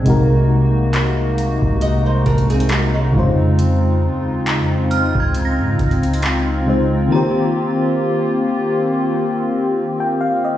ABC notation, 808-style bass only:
X:1
M:4/4
L:1/16
Q:"Swing 16ths" 1/4=68
K:Eb
V:1 name="808-style bass" clef=bass
C,,6- C,, C,,3 C,,4 F,,2- | F,,2 E,,2- E,,/2 F,,2- F,,/2 _D,,2 A,, D,,6 | z16 |]